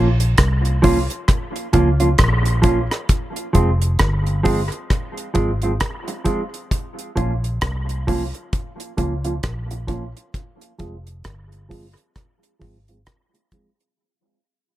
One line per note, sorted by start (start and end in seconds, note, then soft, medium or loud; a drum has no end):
0.00 0.35 A#1 loud
0.20 closed hi-hat medium
0.38 1.07 C2 medium
0.38 kick loud
0.38 cross-stick loud
0.38 closed hi-hat medium
0.65 closed hi-hat soft
0.82 0.97 F3 medium
0.82 0.98 A#3 medium
0.82 0.98 C#4 medium
0.82 0.98 F4 medium
0.82 kick medium
0.82 open hi-hat medium
1.10 closed hi-hat soft
1.28 kick loud
1.28 cross-stick medium
1.28 closed hi-hat medium
1.56 closed hi-hat soft
1.73 2.16 C#2 medium
1.73 1.88 F3 medium
1.73 1.89 A#3 medium
1.73 1.89 C#4 medium
1.73 1.89 F4 medium
1.73 kick medium
1.73 closed hi-hat medium
2.00 2.09 F3 soft
2.00 2.09 A#3 soft
2.00 2.08 C#4 medium
2.00 2.08 F4 medium
2.00 closed hi-hat soft
2.18 2.88 A#1 medium
2.18 kick loud
2.18 cross-stick loud
2.18 closed hi-hat medium
2.45 closed hi-hat soft
2.62 2.78 F3 medium
2.62 2.78 A#3 medium
2.62 2.79 C#4 medium
2.62 2.79 F4 medium
2.62 kick loud
2.62 closed hi-hat medium
2.91 cross-stick medium
2.91 closed hi-hat soft
3.09 kick loud
3.09 closed hi-hat medium
3.36 closed hi-hat soft
3.53 3.97 F1 loud
3.53 3.69 F3 medium
3.53 3.69 G#3 medium
3.53 3.69 C4 medium
3.53 3.70 F4 medium
3.53 kick medium
3.53 closed hi-hat medium
3.82 closed hi-hat medium
3.99 4.69 G1 medium
3.99 kick loud
3.99 cross-stick loud
3.99 closed hi-hat medium
4.27 closed hi-hat soft
4.43 4.59 F3 medium
4.43 4.60 G#3 medium
4.43 4.59 C4 medium
4.43 4.60 F4 medium
4.43 kick medium
4.43 open hi-hat medium
4.72 closed hi-hat soft
4.90 kick loud
4.90 cross-stick medium
4.90 closed hi-hat medium
5.17 closed hi-hat soft
5.34 5.78 G#1 medium
5.34 5.50 F3 medium
5.34 5.50 G#3 medium
5.34 5.50 C4 medium
5.34 5.50 F4 medium
5.34 kick medium
5.34 closed hi-hat medium
5.62 5.72 F3 soft
5.62 5.71 G#3 soft
5.62 5.71 C4 soft
5.62 5.71 F4 soft
5.62 closed hi-hat soft
5.80 kick medium
5.80 cross-stick loud
5.80 closed hi-hat medium
6.08 muted clean electric guitar stroke soft
6.08 closed hi-hat soft
6.24 6.40 F3 medium
6.24 6.41 G#3 medium
6.24 6.41 C4 medium
6.24 6.41 F4 medium
6.24 kick medium
6.24 closed hi-hat medium
6.54 closed hi-hat soft
6.71 kick loud
6.71 closed hi-hat loud
6.99 closed hi-hat soft
7.16 7.60 A#1 medium
7.16 7.31 F3 medium
7.16 7.31 A#3 medium
7.16 7.32 C#4 medium
7.16 7.32 F4 medium
7.16 kick medium
7.16 closed hi-hat medium
7.44 closed hi-hat soft
7.61 8.31 C2 loud
7.61 kick medium
7.61 cross-stick loud
7.61 closed hi-hat medium
7.89 closed hi-hat soft
8.07 8.22 F3 medium
8.07 8.22 A#3 medium
8.07 8.23 C#4 medium
8.07 8.23 F4 medium
8.07 kick medium
8.07 open hi-hat medium
8.34 closed hi-hat soft
8.53 kick loud
8.53 closed hi-hat medium
8.80 closed hi-hat soft
8.97 9.41 C#2 medium
8.97 9.12 F3 medium
8.97 9.13 A#3 medium
8.97 9.13 C#4 medium
8.97 9.13 F4 medium
8.97 kick medium
8.97 closed hi-hat medium
9.24 9.33 F3 soft
9.24 9.33 A#3 soft
9.24 9.33 C#4 soft
9.24 9.33 F4 medium
9.24 closed hi-hat medium
9.43 10.12 A#1 medium
9.43 kick loud
9.43 cross-stick medium
9.43 closed hi-hat medium
9.71 muted clean electric guitar stroke soft
9.71 closed hi-hat soft
9.87 10.03 F3 medium
9.87 10.03 A#3 medium
9.87 10.03 C#4 medium
9.87 10.04 F4 medium
9.87 kick loud
9.87 closed hi-hat medium
10.17 closed hi-hat soft
10.34 kick loud
10.34 closed hi-hat medium
10.61 closed hi-hat soft
10.79 11.22 F1 loud
10.79 10.94 F3 medium
10.79 10.94 G#3 medium
10.79 10.95 C4 medium
10.79 10.95 F4 medium
10.79 kick medium
10.79 closed hi-hat medium
11.07 closed hi-hat soft
11.24 11.94 G1 medium
11.24 kick medium
11.24 cross-stick medium
11.24 closed hi-hat medium
11.52 closed hi-hat soft
11.69 11.84 F3 medium
11.69 11.85 G#3 medium
11.69 11.85 C4 medium
11.69 11.85 F4 medium
11.69 kick medium
11.69 open hi-hat medium
11.97 closed hi-hat soft
12.16 kick loud
12.16 cross-stick medium
12.16 closed hi-hat medium
12.43 closed hi-hat soft
12.59 13.04 G#1 medium
12.59 12.75 F3 medium
12.59 12.75 G#3 medium
12.59 12.76 C4 medium
12.59 12.76 F4 medium
12.59 kick medium
12.59 open hi-hat soft
12.88 12.97 F3 soft
12.88 12.97 G#3 soft
12.88 12.97 C4 soft
12.88 12.96 F4 medium
12.88 closed hi-hat soft
13.06 kick loud
13.06 cross-stick loud
13.06 closed hi-hat medium
13.34 muted clean electric guitar stroke soft
13.34 closed hi-hat soft
13.52 13.67 F3 medium
13.52 13.67 G#3 medium
13.52 13.67 C4 medium
13.52 13.68 F4 medium
13.52 kick loud
13.52 closed hi-hat medium
13.80 closed hi-hat soft